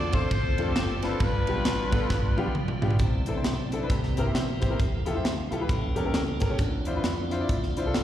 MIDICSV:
0, 0, Header, 1, 6, 480
1, 0, Start_track
1, 0, Key_signature, 0, "major"
1, 0, Tempo, 448766
1, 1287, Time_signature, 4, 2, 24, 8
1, 8593, End_track
2, 0, Start_track
2, 0, Title_t, "Horn section"
2, 0, Program_c, 0, 61
2, 0, Note_on_c, 0, 65, 83
2, 0, Note_on_c, 0, 69, 79
2, 0, Note_on_c, 0, 74, 101
2, 137, Note_off_c, 0, 69, 0
2, 140, Note_off_c, 0, 65, 0
2, 141, Note_off_c, 0, 74, 0
2, 149, Note_on_c, 0, 72, 108
2, 150, Note_on_c, 0, 69, 83
2, 153, Note_on_c, 0, 65, 81
2, 708, Note_on_c, 0, 60, 73
2, 718, Note_off_c, 0, 72, 0
2, 718, Note_on_c, 0, 67, 94
2, 1060, Note_off_c, 0, 69, 0
2, 1062, Note_off_c, 0, 65, 0
2, 1073, Note_off_c, 0, 67, 0
2, 1105, Note_on_c, 0, 69, 96
2, 1244, Note_off_c, 0, 60, 0
2, 1290, Note_off_c, 0, 69, 0
2, 1297, Note_on_c, 0, 62, 75
2, 1305, Note_on_c, 0, 65, 73
2, 1305, Note_on_c, 0, 71, 93
2, 2687, Note_off_c, 0, 62, 0
2, 2691, Note_off_c, 0, 65, 0
2, 2734, Note_off_c, 0, 71, 0
2, 8593, End_track
3, 0, Start_track
3, 0, Title_t, "Grand piano"
3, 0, Program_c, 1, 0
3, 141, Note_on_c, 1, 60, 72
3, 145, Note_on_c, 1, 62, 66
3, 151, Note_on_c, 1, 65, 66
3, 157, Note_on_c, 1, 69, 80
3, 276, Note_off_c, 1, 60, 0
3, 278, Note_off_c, 1, 62, 0
3, 281, Note_off_c, 1, 65, 0
3, 285, Note_off_c, 1, 69, 0
3, 615, Note_on_c, 1, 60, 77
3, 625, Note_on_c, 1, 62, 69
3, 632, Note_on_c, 1, 65, 71
3, 638, Note_on_c, 1, 69, 79
3, 753, Note_off_c, 1, 60, 0
3, 757, Note_off_c, 1, 62, 0
3, 761, Note_off_c, 1, 65, 0
3, 764, Note_off_c, 1, 69, 0
3, 1097, Note_on_c, 1, 60, 75
3, 1103, Note_on_c, 1, 62, 67
3, 1109, Note_on_c, 1, 65, 65
3, 1114, Note_on_c, 1, 71, 75
3, 1233, Note_off_c, 1, 60, 0
3, 1236, Note_off_c, 1, 62, 0
3, 1239, Note_off_c, 1, 65, 0
3, 1242, Note_off_c, 1, 71, 0
3, 1287, Note_on_c, 1, 43, 69
3, 1571, Note_on_c, 1, 59, 72
3, 1579, Note_on_c, 1, 62, 75
3, 1586, Note_on_c, 1, 65, 69
3, 1593, Note_on_c, 1, 67, 83
3, 1709, Note_off_c, 1, 59, 0
3, 1714, Note_off_c, 1, 62, 0
3, 1717, Note_off_c, 1, 65, 0
3, 1721, Note_off_c, 1, 67, 0
3, 2014, Note_off_c, 1, 43, 0
3, 2052, Note_on_c, 1, 59, 84
3, 2057, Note_on_c, 1, 62, 80
3, 2064, Note_on_c, 1, 65, 76
3, 2069, Note_on_c, 1, 69, 89
3, 2190, Note_off_c, 1, 59, 0
3, 2192, Note_off_c, 1, 62, 0
3, 2196, Note_off_c, 1, 65, 0
3, 2198, Note_off_c, 1, 69, 0
3, 2533, Note_on_c, 1, 59, 92
3, 2537, Note_on_c, 1, 62, 74
3, 2541, Note_on_c, 1, 65, 80
3, 2551, Note_on_c, 1, 67, 102
3, 2670, Note_off_c, 1, 59, 0
3, 2672, Note_off_c, 1, 62, 0
3, 2674, Note_off_c, 1, 65, 0
3, 2679, Note_off_c, 1, 67, 0
3, 3010, Note_on_c, 1, 59, 78
3, 3019, Note_on_c, 1, 65, 66
3, 3020, Note_on_c, 1, 62, 74
3, 3030, Note_on_c, 1, 67, 90
3, 3148, Note_off_c, 1, 59, 0
3, 3153, Note_off_c, 1, 62, 0
3, 3153, Note_off_c, 1, 65, 0
3, 3158, Note_off_c, 1, 67, 0
3, 3217, Note_on_c, 1, 48, 70
3, 3500, Note_on_c, 1, 60, 82
3, 3505, Note_on_c, 1, 62, 74
3, 3507, Note_on_c, 1, 64, 74
3, 3514, Note_on_c, 1, 69, 84
3, 3565, Note_off_c, 1, 60, 0
3, 3568, Note_off_c, 1, 62, 0
3, 3569, Note_off_c, 1, 64, 0
3, 3572, Note_off_c, 1, 69, 0
3, 3585, Note_on_c, 1, 60, 70
3, 3598, Note_on_c, 1, 62, 59
3, 3599, Note_on_c, 1, 64, 60
3, 3606, Note_on_c, 1, 72, 74
3, 3745, Note_off_c, 1, 60, 0
3, 3752, Note_off_c, 1, 62, 0
3, 3752, Note_off_c, 1, 64, 0
3, 3756, Note_off_c, 1, 72, 0
3, 3938, Note_off_c, 1, 48, 0
3, 3976, Note_on_c, 1, 60, 72
3, 3984, Note_on_c, 1, 62, 75
3, 3992, Note_on_c, 1, 64, 75
3, 3995, Note_on_c, 1, 69, 85
3, 4043, Note_off_c, 1, 60, 0
3, 4048, Note_off_c, 1, 62, 0
3, 4051, Note_off_c, 1, 64, 0
3, 4053, Note_off_c, 1, 69, 0
3, 4080, Note_on_c, 1, 60, 78
3, 4087, Note_on_c, 1, 62, 71
3, 4092, Note_on_c, 1, 64, 72
3, 4098, Note_on_c, 1, 71, 82
3, 4170, Note_off_c, 1, 60, 0
3, 4173, Note_off_c, 1, 62, 0
3, 4175, Note_off_c, 1, 64, 0
3, 4176, Note_on_c, 1, 48, 71
3, 4178, Note_off_c, 1, 71, 0
3, 4462, Note_on_c, 1, 60, 85
3, 4466, Note_on_c, 1, 64, 77
3, 4472, Note_on_c, 1, 67, 78
3, 4481, Note_on_c, 1, 70, 94
3, 4527, Note_off_c, 1, 60, 0
3, 4528, Note_off_c, 1, 64, 0
3, 4531, Note_off_c, 1, 67, 0
3, 4536, Note_off_c, 1, 70, 0
3, 4545, Note_on_c, 1, 60, 75
3, 4550, Note_on_c, 1, 64, 75
3, 4557, Note_on_c, 1, 67, 73
3, 4565, Note_on_c, 1, 72, 78
3, 4706, Note_off_c, 1, 60, 0
3, 4708, Note_off_c, 1, 64, 0
3, 4711, Note_off_c, 1, 67, 0
3, 4715, Note_off_c, 1, 72, 0
3, 4899, Note_off_c, 1, 48, 0
3, 4922, Note_on_c, 1, 60, 74
3, 4927, Note_on_c, 1, 64, 68
3, 4937, Note_on_c, 1, 67, 71
3, 4940, Note_on_c, 1, 72, 83
3, 4997, Note_off_c, 1, 60, 0
3, 4999, Note_off_c, 1, 64, 0
3, 5004, Note_off_c, 1, 67, 0
3, 5006, Note_off_c, 1, 72, 0
3, 5016, Note_on_c, 1, 60, 74
3, 5024, Note_on_c, 1, 64, 70
3, 5029, Note_on_c, 1, 67, 74
3, 5034, Note_on_c, 1, 70, 77
3, 5118, Note_off_c, 1, 60, 0
3, 5122, Note_off_c, 1, 64, 0
3, 5124, Note_off_c, 1, 67, 0
3, 5127, Note_off_c, 1, 70, 0
3, 5406, Note_on_c, 1, 64, 89
3, 5414, Note_on_c, 1, 65, 76
3, 5419, Note_on_c, 1, 67, 80
3, 5422, Note_on_c, 1, 69, 93
3, 5479, Note_off_c, 1, 64, 0
3, 5483, Note_off_c, 1, 65, 0
3, 5486, Note_off_c, 1, 67, 0
3, 5487, Note_off_c, 1, 69, 0
3, 5504, Note_on_c, 1, 64, 76
3, 5511, Note_on_c, 1, 65, 62
3, 5514, Note_on_c, 1, 67, 68
3, 5519, Note_on_c, 1, 72, 77
3, 5665, Note_off_c, 1, 64, 0
3, 5669, Note_off_c, 1, 65, 0
3, 5671, Note_off_c, 1, 67, 0
3, 5673, Note_off_c, 1, 72, 0
3, 5889, Note_on_c, 1, 64, 82
3, 5897, Note_on_c, 1, 65, 69
3, 5903, Note_on_c, 1, 67, 71
3, 5908, Note_on_c, 1, 69, 88
3, 5961, Note_off_c, 1, 64, 0
3, 5965, Note_off_c, 1, 65, 0
3, 5968, Note_off_c, 1, 67, 0
3, 5970, Note_off_c, 1, 69, 0
3, 5992, Note_on_c, 1, 64, 70
3, 5999, Note_on_c, 1, 65, 67
3, 6006, Note_on_c, 1, 67, 69
3, 6007, Note_on_c, 1, 71, 84
3, 6084, Note_on_c, 1, 45, 71
3, 6086, Note_off_c, 1, 64, 0
3, 6090, Note_off_c, 1, 65, 0
3, 6093, Note_off_c, 1, 67, 0
3, 6094, Note_off_c, 1, 71, 0
3, 6370, Note_on_c, 1, 61, 87
3, 6372, Note_on_c, 1, 67, 81
3, 6377, Note_on_c, 1, 69, 78
3, 6383, Note_on_c, 1, 70, 89
3, 6442, Note_off_c, 1, 61, 0
3, 6443, Note_off_c, 1, 67, 0
3, 6445, Note_off_c, 1, 69, 0
3, 6448, Note_off_c, 1, 70, 0
3, 6468, Note_on_c, 1, 61, 77
3, 6470, Note_on_c, 1, 67, 75
3, 6478, Note_on_c, 1, 69, 73
3, 6483, Note_on_c, 1, 70, 92
3, 6628, Note_off_c, 1, 61, 0
3, 6629, Note_off_c, 1, 67, 0
3, 6633, Note_off_c, 1, 69, 0
3, 6636, Note_off_c, 1, 70, 0
3, 6814, Note_off_c, 1, 45, 0
3, 6848, Note_on_c, 1, 61, 75
3, 6857, Note_on_c, 1, 67, 69
3, 6861, Note_on_c, 1, 69, 71
3, 6864, Note_on_c, 1, 70, 90
3, 6921, Note_off_c, 1, 61, 0
3, 6925, Note_off_c, 1, 67, 0
3, 6928, Note_off_c, 1, 69, 0
3, 6929, Note_off_c, 1, 70, 0
3, 6953, Note_on_c, 1, 61, 79
3, 6956, Note_on_c, 1, 67, 71
3, 6961, Note_on_c, 1, 69, 68
3, 6966, Note_on_c, 1, 73, 79
3, 7047, Note_off_c, 1, 61, 0
3, 7049, Note_off_c, 1, 67, 0
3, 7052, Note_off_c, 1, 69, 0
3, 7053, Note_on_c, 1, 50, 69
3, 7054, Note_off_c, 1, 73, 0
3, 7339, Note_on_c, 1, 62, 88
3, 7342, Note_on_c, 1, 64, 81
3, 7351, Note_on_c, 1, 65, 78
3, 7352, Note_on_c, 1, 72, 93
3, 7407, Note_off_c, 1, 62, 0
3, 7408, Note_off_c, 1, 64, 0
3, 7413, Note_off_c, 1, 65, 0
3, 7413, Note_off_c, 1, 72, 0
3, 7431, Note_on_c, 1, 62, 74
3, 7438, Note_on_c, 1, 64, 64
3, 7444, Note_on_c, 1, 65, 70
3, 7450, Note_on_c, 1, 71, 83
3, 7591, Note_off_c, 1, 62, 0
3, 7594, Note_off_c, 1, 64, 0
3, 7597, Note_off_c, 1, 65, 0
3, 7600, Note_off_c, 1, 71, 0
3, 7779, Note_off_c, 1, 50, 0
3, 7816, Note_on_c, 1, 62, 80
3, 7826, Note_on_c, 1, 64, 76
3, 7827, Note_on_c, 1, 65, 82
3, 7838, Note_on_c, 1, 72, 89
3, 7886, Note_off_c, 1, 62, 0
3, 7891, Note_off_c, 1, 64, 0
3, 7891, Note_off_c, 1, 65, 0
3, 7897, Note_off_c, 1, 72, 0
3, 7908, Note_on_c, 1, 62, 75
3, 7917, Note_on_c, 1, 64, 74
3, 7925, Note_on_c, 1, 65, 64
3, 7925, Note_on_c, 1, 74, 85
3, 8070, Note_off_c, 1, 62, 0
3, 8074, Note_off_c, 1, 64, 0
3, 8078, Note_off_c, 1, 65, 0
3, 8078, Note_off_c, 1, 74, 0
3, 8308, Note_on_c, 1, 62, 87
3, 8313, Note_on_c, 1, 64, 79
3, 8318, Note_on_c, 1, 65, 77
3, 8322, Note_on_c, 1, 72, 89
3, 8372, Note_off_c, 1, 62, 0
3, 8375, Note_off_c, 1, 64, 0
3, 8377, Note_off_c, 1, 65, 0
3, 8379, Note_off_c, 1, 72, 0
3, 8402, Note_on_c, 1, 62, 85
3, 8406, Note_on_c, 1, 64, 69
3, 8415, Note_on_c, 1, 65, 75
3, 8417, Note_on_c, 1, 69, 91
3, 8557, Note_off_c, 1, 62, 0
3, 8559, Note_off_c, 1, 64, 0
3, 8564, Note_off_c, 1, 65, 0
3, 8564, Note_off_c, 1, 69, 0
3, 8593, End_track
4, 0, Start_track
4, 0, Title_t, "Tonewheel organ"
4, 0, Program_c, 2, 16
4, 0, Note_on_c, 2, 50, 64
4, 0, Note_on_c, 2, 57, 65
4, 0, Note_on_c, 2, 60, 63
4, 0, Note_on_c, 2, 65, 76
4, 1262, Note_off_c, 2, 57, 0
4, 1266, Note_off_c, 2, 60, 0
4, 1282, Note_on_c, 2, 55, 66
4, 1285, Note_on_c, 2, 59, 61
4, 3163, Note_off_c, 2, 50, 0
4, 3164, Note_off_c, 2, 65, 0
4, 3183, Note_off_c, 2, 55, 0
4, 3184, Note_off_c, 2, 59, 0
4, 3212, Note_on_c, 2, 64, 66
4, 3214, Note_on_c, 2, 50, 66
4, 3215, Note_on_c, 2, 60, 58
4, 3219, Note_on_c, 2, 57, 54
4, 4158, Note_off_c, 2, 64, 0
4, 4159, Note_off_c, 2, 50, 0
4, 4162, Note_off_c, 2, 57, 0
4, 4177, Note_on_c, 2, 58, 64
4, 4177, Note_on_c, 2, 67, 75
4, 4178, Note_on_c, 2, 52, 71
4, 5111, Note_off_c, 2, 60, 0
4, 5122, Note_off_c, 2, 52, 0
4, 5122, Note_off_c, 2, 58, 0
4, 5130, Note_on_c, 2, 64, 57
4, 5136, Note_on_c, 2, 53, 61
4, 5140, Note_on_c, 2, 57, 54
4, 6074, Note_off_c, 2, 67, 0
4, 6079, Note_off_c, 2, 64, 0
4, 6082, Note_off_c, 2, 53, 0
4, 6084, Note_off_c, 2, 57, 0
4, 6085, Note_on_c, 2, 55, 70
4, 6085, Note_on_c, 2, 61, 70
4, 6088, Note_on_c, 2, 58, 70
4, 6089, Note_on_c, 2, 69, 78
4, 7037, Note_off_c, 2, 55, 0
4, 7037, Note_on_c, 2, 64, 66
4, 7038, Note_off_c, 2, 61, 0
4, 7038, Note_on_c, 2, 65, 76
4, 7039, Note_off_c, 2, 58, 0
4, 7039, Note_off_c, 2, 69, 0
4, 7042, Note_on_c, 2, 60, 61
4, 7044, Note_on_c, 2, 62, 56
4, 8593, Note_off_c, 2, 60, 0
4, 8593, Note_off_c, 2, 62, 0
4, 8593, Note_off_c, 2, 64, 0
4, 8593, Note_off_c, 2, 65, 0
4, 8593, End_track
5, 0, Start_track
5, 0, Title_t, "Fingered electric bass"
5, 0, Program_c, 3, 33
5, 0, Note_on_c, 3, 40, 95
5, 255, Note_off_c, 3, 40, 0
5, 334, Note_on_c, 3, 38, 99
5, 578, Note_off_c, 3, 38, 0
5, 621, Note_on_c, 3, 41, 77
5, 781, Note_off_c, 3, 41, 0
5, 810, Note_on_c, 3, 30, 96
5, 1216, Note_off_c, 3, 30, 0
5, 1286, Note_on_c, 3, 31, 93
5, 1533, Note_off_c, 3, 31, 0
5, 1584, Note_on_c, 3, 35, 78
5, 1741, Note_off_c, 3, 35, 0
5, 1761, Note_on_c, 3, 33, 95
5, 2170, Note_off_c, 3, 33, 0
5, 2246, Note_on_c, 3, 31, 93
5, 2493, Note_off_c, 3, 31, 0
5, 2531, Note_on_c, 3, 35, 83
5, 2694, Note_off_c, 3, 35, 0
5, 2721, Note_on_c, 3, 35, 90
5, 3130, Note_off_c, 3, 35, 0
5, 3200, Note_on_c, 3, 36, 81
5, 3449, Note_off_c, 3, 36, 0
5, 3503, Note_on_c, 3, 33, 68
5, 3660, Note_off_c, 3, 33, 0
5, 3693, Note_on_c, 3, 35, 85
5, 4097, Note_off_c, 3, 35, 0
5, 4171, Note_on_c, 3, 36, 85
5, 4416, Note_off_c, 3, 36, 0
5, 4454, Note_on_c, 3, 31, 85
5, 4615, Note_off_c, 3, 31, 0
5, 4635, Note_on_c, 3, 34, 98
5, 5047, Note_off_c, 3, 34, 0
5, 5131, Note_on_c, 3, 29, 91
5, 5376, Note_off_c, 3, 29, 0
5, 5414, Note_on_c, 3, 40, 81
5, 5576, Note_off_c, 3, 40, 0
5, 5608, Note_on_c, 3, 38, 81
5, 5855, Note_off_c, 3, 38, 0
5, 5891, Note_on_c, 3, 35, 77
5, 6054, Note_off_c, 3, 35, 0
5, 6092, Note_on_c, 3, 33, 92
5, 6337, Note_off_c, 3, 33, 0
5, 6379, Note_on_c, 3, 40, 80
5, 6539, Note_off_c, 3, 40, 0
5, 6571, Note_on_c, 3, 37, 96
5, 6978, Note_off_c, 3, 37, 0
5, 7045, Note_on_c, 3, 38, 96
5, 7293, Note_off_c, 3, 38, 0
5, 7344, Note_on_c, 3, 40, 77
5, 7503, Note_off_c, 3, 40, 0
5, 7529, Note_on_c, 3, 41, 89
5, 7937, Note_off_c, 3, 41, 0
5, 8013, Note_on_c, 3, 38, 98
5, 8259, Note_off_c, 3, 38, 0
5, 8299, Note_on_c, 3, 36, 87
5, 8461, Note_off_c, 3, 36, 0
5, 8494, Note_on_c, 3, 30, 81
5, 8593, Note_off_c, 3, 30, 0
5, 8593, End_track
6, 0, Start_track
6, 0, Title_t, "Drums"
6, 134, Note_on_c, 9, 53, 58
6, 143, Note_on_c, 9, 36, 98
6, 241, Note_off_c, 9, 53, 0
6, 250, Note_off_c, 9, 36, 0
6, 333, Note_on_c, 9, 36, 118
6, 334, Note_on_c, 9, 53, 68
6, 440, Note_off_c, 9, 36, 0
6, 441, Note_off_c, 9, 53, 0
6, 620, Note_on_c, 9, 53, 58
6, 727, Note_off_c, 9, 53, 0
6, 810, Note_on_c, 9, 38, 112
6, 812, Note_on_c, 9, 53, 75
6, 917, Note_off_c, 9, 38, 0
6, 919, Note_off_c, 9, 53, 0
6, 1096, Note_on_c, 9, 53, 56
6, 1106, Note_on_c, 9, 38, 36
6, 1203, Note_off_c, 9, 53, 0
6, 1213, Note_off_c, 9, 38, 0
6, 1285, Note_on_c, 9, 53, 73
6, 1288, Note_on_c, 9, 36, 110
6, 1392, Note_off_c, 9, 53, 0
6, 1395, Note_off_c, 9, 36, 0
6, 1573, Note_on_c, 9, 53, 57
6, 1680, Note_off_c, 9, 53, 0
6, 1766, Note_on_c, 9, 53, 87
6, 1767, Note_on_c, 9, 38, 106
6, 1873, Note_off_c, 9, 53, 0
6, 1874, Note_off_c, 9, 38, 0
6, 2057, Note_on_c, 9, 53, 67
6, 2059, Note_on_c, 9, 36, 89
6, 2164, Note_off_c, 9, 53, 0
6, 2166, Note_off_c, 9, 36, 0
6, 2247, Note_on_c, 9, 38, 65
6, 2248, Note_on_c, 9, 36, 116
6, 2354, Note_off_c, 9, 38, 0
6, 2355, Note_off_c, 9, 36, 0
6, 2543, Note_on_c, 9, 48, 73
6, 2650, Note_off_c, 9, 48, 0
6, 2726, Note_on_c, 9, 47, 83
6, 2833, Note_off_c, 9, 47, 0
6, 2869, Note_on_c, 9, 45, 74
6, 2976, Note_off_c, 9, 45, 0
6, 3017, Note_on_c, 9, 43, 100
6, 3107, Note_off_c, 9, 43, 0
6, 3107, Note_on_c, 9, 43, 88
6, 3198, Note_on_c, 9, 42, 83
6, 3204, Note_on_c, 9, 36, 100
6, 3214, Note_off_c, 9, 43, 0
6, 3305, Note_off_c, 9, 42, 0
6, 3311, Note_off_c, 9, 36, 0
6, 3486, Note_on_c, 9, 42, 64
6, 3593, Note_off_c, 9, 42, 0
6, 3683, Note_on_c, 9, 42, 98
6, 3684, Note_on_c, 9, 38, 110
6, 3790, Note_off_c, 9, 42, 0
6, 3791, Note_off_c, 9, 38, 0
6, 3979, Note_on_c, 9, 42, 72
6, 4086, Note_off_c, 9, 42, 0
6, 4169, Note_on_c, 9, 36, 113
6, 4172, Note_on_c, 9, 42, 79
6, 4276, Note_off_c, 9, 36, 0
6, 4279, Note_off_c, 9, 42, 0
6, 4311, Note_on_c, 9, 38, 32
6, 4418, Note_off_c, 9, 38, 0
6, 4461, Note_on_c, 9, 42, 68
6, 4568, Note_off_c, 9, 42, 0
6, 4651, Note_on_c, 9, 38, 104
6, 4652, Note_on_c, 9, 42, 84
6, 4758, Note_off_c, 9, 38, 0
6, 4759, Note_off_c, 9, 42, 0
6, 4937, Note_on_c, 9, 42, 71
6, 4947, Note_on_c, 9, 36, 91
6, 5044, Note_off_c, 9, 42, 0
6, 5054, Note_off_c, 9, 36, 0
6, 5130, Note_on_c, 9, 36, 96
6, 5135, Note_on_c, 9, 42, 84
6, 5237, Note_off_c, 9, 36, 0
6, 5242, Note_off_c, 9, 42, 0
6, 5414, Note_on_c, 9, 42, 62
6, 5521, Note_off_c, 9, 42, 0
6, 5614, Note_on_c, 9, 42, 93
6, 5615, Note_on_c, 9, 38, 113
6, 5721, Note_off_c, 9, 42, 0
6, 5722, Note_off_c, 9, 38, 0
6, 5903, Note_on_c, 9, 42, 73
6, 6010, Note_off_c, 9, 42, 0
6, 6089, Note_on_c, 9, 36, 112
6, 6091, Note_on_c, 9, 42, 86
6, 6196, Note_off_c, 9, 36, 0
6, 6198, Note_off_c, 9, 42, 0
6, 6376, Note_on_c, 9, 42, 63
6, 6483, Note_off_c, 9, 42, 0
6, 6567, Note_on_c, 9, 38, 105
6, 6568, Note_on_c, 9, 42, 87
6, 6674, Note_off_c, 9, 38, 0
6, 6675, Note_off_c, 9, 42, 0
6, 6849, Note_on_c, 9, 42, 66
6, 6858, Note_on_c, 9, 38, 31
6, 6863, Note_on_c, 9, 36, 90
6, 6956, Note_off_c, 9, 42, 0
6, 6965, Note_off_c, 9, 38, 0
6, 6970, Note_off_c, 9, 36, 0
6, 7045, Note_on_c, 9, 42, 93
6, 7048, Note_on_c, 9, 36, 101
6, 7152, Note_off_c, 9, 42, 0
6, 7155, Note_off_c, 9, 36, 0
6, 7330, Note_on_c, 9, 42, 68
6, 7437, Note_off_c, 9, 42, 0
6, 7528, Note_on_c, 9, 42, 98
6, 7529, Note_on_c, 9, 38, 112
6, 7635, Note_off_c, 9, 42, 0
6, 7636, Note_off_c, 9, 38, 0
6, 7823, Note_on_c, 9, 42, 74
6, 7930, Note_off_c, 9, 42, 0
6, 8014, Note_on_c, 9, 36, 106
6, 8020, Note_on_c, 9, 42, 81
6, 8121, Note_off_c, 9, 36, 0
6, 8127, Note_off_c, 9, 42, 0
6, 8159, Note_on_c, 9, 38, 32
6, 8266, Note_off_c, 9, 38, 0
6, 8308, Note_on_c, 9, 42, 68
6, 8415, Note_off_c, 9, 42, 0
6, 8497, Note_on_c, 9, 38, 108
6, 8499, Note_on_c, 9, 42, 82
6, 8593, Note_off_c, 9, 38, 0
6, 8593, Note_off_c, 9, 42, 0
6, 8593, End_track
0, 0, End_of_file